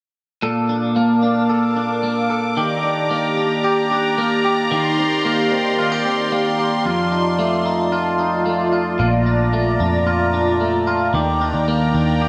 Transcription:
0.42 2.57 A#2 medium
0.42 2.55 A#3 medium
0.42 1.48 A4 medium
0.42 2.55 F5 medium
0.42 2.54 A5 medium
0.42 4.67 D6 medium
0.69 1.22 D4 soft
0.96 2.03 A#3 medium
1.23 1.76 D4 medium
1.49 2.29 A4 soft
1.76 2.83 D4 medium
2.03 3.10 A#3 soft
2.30 2.57 A4 soft
2.57 4.71 D#3 medium
2.57 4.69 G4 medium
2.57 3.64 G4 medium
2.57 8.96 D5 medium
2.57 6.82 A#5 medium
2.84 3.36 D4 soft
3.10 4.18 A#3 medium
3.37 3.90 D4 soft
3.64 4.44 G4 medium
3.91 4.77 D4 soft
4.18 5.01 A#3 soft
4.44 4.71 G4 soft
4.71 6.88 D#3 medium
4.71 6.83 D#3 medium
4.71 6.83 G4 medium
4.71 5.78 G4 medium
4.71 8.96 C6 medium
4.98 5.51 C4 soft
5.25 6.31 A#3 medium
5.51 6.05 C4 medium
5.78 5.92 F4 medium
5.92 6.58 G4 soft
6.05 7.12 C4 soft
6.32 6.91 A#3 medium
6.59 6.86 G4 soft
6.85 9.00 F2 medium
6.85 11.10 F4 medium
6.85 7.92 F4 medium
6.85 11.10 A5 medium
7.12 7.64 D#4 soft
7.39 8.45 A3 medium
7.66 8.18 D#4 soft
7.92 8.72 F4 medium
8.19 9.05 D#4 medium
8.46 9.53 A3 soft
8.72 8.99 F4 soft
8.99 9.76 A#1 medium
8.99 11.14 A#2 medium
8.99 10.05 F4 soft
8.99 11.12 D5 medium
8.99 11.12 A#5 medium
9.26 9.80 D4 soft
9.53 10.59 A3 medium
9.80 11.10 F2 medium
9.80 10.33 D4 soft
10.07 10.86 F4 medium
10.34 11.40 D4 soft
10.61 11.20 A3 soft
10.87 11.14 F4 soft
11.14 11.52 D#2 medium
11.14 12.29 D#3 medium
11.14 12.21 G4 medium
11.14 12.29 D5 medium
11.14 12.29 G5 medium
11.14 12.29 A#5 medium
11.41 11.93 D4 soft
11.54 11.92 D#2 medium
11.68 12.29 A#3 medium
11.95 12.29 D#2 medium
11.95 12.29 D4 soft
12.22 12.29 G4 medium

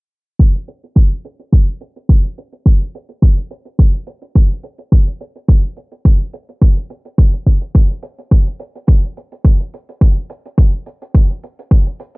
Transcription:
0.39 kick loud
0.39 closed hi-hat medium
0.55 closed hi-hat medium
0.68 closed hi-hat medium
0.84 closed hi-hat medium
0.95 kick loud
0.95 closed hi-hat medium
1.25 closed hi-hat medium
1.39 closed hi-hat medium
1.52 kick loud
1.52 closed hi-hat medium
1.81 closed hi-hat medium
1.96 closed hi-hat medium
2.09 kick loud
2.09 closed hi-hat medium
2.24 closed hi-hat soft
2.38 closed hi-hat medium
2.52 closed hi-hat medium
2.66 kick loud
2.66 closed hi-hat medium
2.81 closed hi-hat soft
2.95 closed hi-hat medium
3.09 closed hi-hat medium
3.22 kick loud
3.22 closed hi-hat medium
3.37 closed hi-hat soft
3.51 closed hi-hat medium
3.65 closed hi-hat medium
3.79 kick loud
3.79 closed hi-hat medium
3.93 closed hi-hat soft
4.07 closed hi-hat medium
4.22 closed hi-hat medium
4.35 kick loud
4.35 closed hi-hat medium
4.51 closed hi-hat soft
4.63 closed hi-hat medium
4.78 closed hi-hat medium
4.92 kick loud
4.92 closed hi-hat medium
5.07 closed hi-hat soft
5.21 closed hi-hat medium
5.36 closed hi-hat medium
5.48 kick loud
5.48 closed hi-hat medium
5.77 closed hi-hat medium
5.92 closed hi-hat medium
6.05 kick loud
6.05 closed hi-hat medium
6.33 closed hi-hat medium
6.49 closed hi-hat medium
6.61 kick loud
6.61 closed hi-hat medium
6.77 closed hi-hat soft
6.90 closed hi-hat medium
7.05 closed hi-hat medium
7.18 kick loud
7.18 closed hi-hat medium
7.33 closed hi-hat soft
7.47 kick medium
7.47 closed hi-hat medium
7.61 closed hi-hat medium
7.75 kick loud
7.75 closed hi-hat medium
7.90 closed hi-hat soft
8.03 closed hi-hat medium
8.18 closed hi-hat medium
8.31 kick loud
8.31 closed hi-hat medium
8.47 closed hi-hat soft
8.60 closed hi-hat medium
8.75 closed hi-hat medium
8.87 kick loud
8.87 closed hi-hat medium
9.04 closed hi-hat soft
9.17 closed hi-hat medium
9.32 closed hi-hat medium
9.45 kick loud
9.45 closed hi-hat medium
9.60 closed hi-hat soft
9.74 closed hi-hat medium
9.89 closed hi-hat medium
10.01 kick loud
10.01 closed hi-hat medium
10.30 closed hi-hat medium
10.46 closed hi-hat medium
10.58 kick loud
10.58 closed hi-hat medium
10.86 closed hi-hat medium
11.02 closed hi-hat medium
11.15 kick loud
11.15 closed hi-hat medium
11.30 closed hi-hat soft
11.43 closed hi-hat medium
11.59 closed hi-hat medium
11.71 kick loud
11.71 closed hi-hat medium
11.86 closed hi-hat soft
12.00 closed hi-hat medium

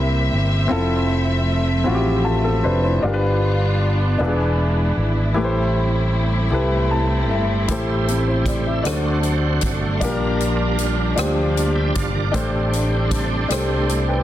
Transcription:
0.00 0.28 C2 medium
0.00 0.67 C3 medium
0.00 0.67 G3 medium
0.00 0.69 A#3 medium
0.00 0.63 C4 medium
0.00 3.00 C4 soft
0.00 0.64 E4 medium
0.00 0.65 G4 medium
0.00 0.65 A#4 medium
0.00 2.99 E5 medium
0.33 0.69 G1 medium
0.68 1.84 F1 medium
0.68 3.01 F3 medium
0.68 3.01 A3 medium
0.68 1.79 C4 medium
0.68 1.80 E4 medium
0.68 1.81 F4 medium
0.68 1.81 A4 medium
1.84 2.61 A1 medium
1.84 2.25 C4 medium
1.84 2.25 E4 medium
1.84 2.23 F4 medium
1.84 1.94 F#4 medium
1.94 2.30 G4 medium
2.24 2.44 A3 soft
2.24 2.44 F4 medium
2.24 2.62 A5 medium
2.44 2.64 C4 soft
2.44 2.63 A4 medium
2.64 3.01 F1 medium
2.64 2.83 D4 soft
2.64 2.83 B4 medium
2.64 2.82 C5 medium
2.83 3.21 E4 soft
2.83 3.21 C5 medium
3.03 4.16 G1 medium
3.03 4.17 G2 medium
3.03 4.18 G3 medium
3.03 5.34 B3 medium
3.03 4.13 D4 medium
3.03 5.34 D4 medium
3.03 4.19 F4 medium
3.03 4.14 F4 medium
3.03 4.14 G4 medium
3.07 3.12 A#4 medium
3.14 4.18 B4 medium
4.18 4.94 E1 medium
4.18 5.32 E3 medium
4.18 5.35 G#3 medium
4.18 5.29 D4 medium
4.18 5.29 E4 medium
4.18 8.81 E4 medium
4.18 4.27 F4 soft
4.22 5.31 B4 medium
4.28 5.34 G#4 medium
4.97 5.33 G#1 medium
5.34 6.49 A1 medium
5.34 6.48 A2 medium
5.34 8.81 G3 medium
5.34 9.97 A3 medium
5.34 8.81 C4 medium
5.34 6.45 E4 medium
5.34 6.46 G4 medium
5.34 6.46 A4 medium
5.34 5.43 B4 medium
5.44 6.50 C5 medium
6.50 7.30 C2 medium
6.50 7.61 E4 medium
6.50 7.62 G4 medium
6.50 7.62 A4 medium
6.50 7.63 B4 medium
6.91 7.27 A5 medium
7.30 7.65 G1 medium
7.30 7.66 E5 medium
7.68 8.81 A1 medium
7.68 8.82 A2 medium
7.68 8.80 A3 medium
7.68 8.07 E4 medium
7.68 8.85 E4 medium
7.68 8.85 G4 medium
7.68 8.08 G4 medium
7.68 8.06 A4 medium
7.68 8.80 C5 medium
7.68 8.09 C5 medium
7.68 kick medium
7.68 closed hi-hat medium
8.08 8.27 C4 soft
8.08 8.26 A4 soft
8.08 closed hi-hat soft
8.28 8.46 E4 soft
8.28 8.46 C5 medium
8.46 8.65 D5 soft
8.46 kick medium
8.46 closed hi-hat medium
8.67 9.04 G4 soft
8.67 9.03 E5 soft
8.81 9.58 D2 medium
8.81 9.98 D3 medium
8.81 10.00 F#3 medium
8.81 10.00 A3 medium
8.81 10.00 C4 medium
8.81 9.98 D4 medium
8.81 9.94 D4 medium
8.81 12.31 D4 medium
8.81 10.00 F#4 medium
8.81 9.95 F#4 medium
8.81 10.00 C5 medium
8.81 closed hi-hat medium
8.86 9.96 A4 medium
8.86 9.96 C5 medium
8.86 cross-stick medium
9.23 closed hi-hat soft
9.61 9.98 G1 medium
9.61 kick medium
9.61 closed hi-hat medium
9.98 11.14 A#1 medium
9.98 11.14 A#2 medium
9.98 12.32 F3 medium
9.98 12.28 G3 medium
9.98 12.32 A#3 medium
9.98 12.29 D4 medium
9.98 11.11 D4 medium
9.98 12.29 F4 medium
9.98 11.11 F4 medium
9.98 11.14 A#4 medium
9.98 kick medium
9.98 closed hi-hat medium
10.02 14.23 G3 medium
10.02 11.12 G4 medium
10.02 11.12 A#4 medium
10.40 closed hi-hat soft
10.79 closed hi-hat medium
11.15 11.91 D2 medium
11.15 12.26 D4 medium
11.15 12.27 F4 medium
11.15 12.27 G4 medium
11.15 12.28 C5 medium
11.15 cross-stick medium
11.15 closed hi-hat medium
11.57 closed hi-hat soft
11.75 11.94 E5 soft
11.75 11.94 G5 medium
11.95 12.31 G1 medium
11.95 12.13 D5 medium
11.95 12.13 F5 medium
11.95 kick medium
11.95 closed hi-hat medium
12.14 12.51 A#4 soft
12.14 12.51 D5 soft
12.31 13.46 A1 medium
12.31 13.46 A2 medium
12.31 14.23 A3 medium
12.31 13.43 D4 medium
12.31 14.23 D4 medium
12.31 14.23 G4 medium
12.31 13.43 G4 medium
12.31 13.44 A4 medium
12.31 14.23 C5 medium
12.31 kick medium
12.31 closed hi-hat medium
12.35 14.23 C4 medium
12.35 13.44 C5 medium
12.73 closed hi-hat soft
13.11 kick medium
13.11 closed hi-hat medium
13.48 14.23 C2 medium
13.48 14.23 D4 medium
13.48 14.23 G4 medium
13.48 14.23 A4 medium
13.48 13.90 C5 medium
13.48 cross-stick medium
13.48 closed hi-hat medium
13.89 closed hi-hat soft
14.08 14.23 B4 soft
14.08 14.23 G5 soft

